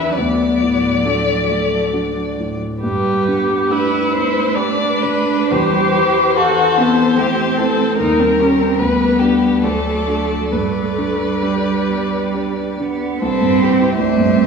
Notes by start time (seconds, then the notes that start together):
Already playing: E2 E3 D4 E4 G4 B4 E5
0.17 D2 F#3 B3 D5
0.61 A2
1.05 A3 D4 F#4
1.49 A3
1.93 D4 F#4
2.38 A2
2.82 G2 G3 G4 B4
3.27 D3 B3
3.69 A3 D4 E4 G4 B4
4.13 B3 C5
4.55 D4 G4 D5
5.02 D3 B4
5.50 E2 G3 G4 C5
5.97 E3
6.37 E4 F#4 G4 A4 C5
6.77 B3 C4
7.17 A3 C4 E4 G4
7.58 E3 A4
7.99 D#2 G3 D#4 A#4
8.20 C4
8.39 C#4 G4
8.60 C4
8.79 D2 G3 B3 B4
9.20 D4 G4
9.63 D2 F#3 A3 A4 D5
10.07 D4 F#4
10.52 G2 G3 A3 B4 D5
10.98 D3
11.42 G3 D4 G4
11.88 B3
12.34 D4 G4
12.79 D3 B3
13.20 C2 C4 E4 A4 C5
13.42 G2
13.61 C4 G4
13.80 E4
13.97 C2 A3 D4 C5 E5
14.18 G2
14.36 C4